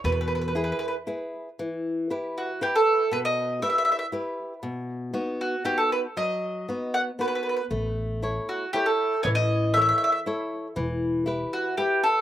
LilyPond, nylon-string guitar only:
\new Staff \with { instrumentName = "Nylon-string guitar" } { \time 3/4 \key e \major \tempo 4 = 118 b,4 <e' gis' b'>4 <e' gis' b'>4 | \key e \minor e4 <e' g' b'>4 <e' g' b'>4 | b,4 <e' g' b'>4 <e' g' b'>4 | b,4 <b dis' fis'>4 <b dis' fis'>4 |
fis4 <b dis' fis'>4 <b dis' fis'>4 | a4 <e' a' cis''>4 <e' a' cis''>4 | e4 <e' a' cis''>4 <e' a' cis''>4 | e4 <e' g' b'>4 <e' g' b'>4 | }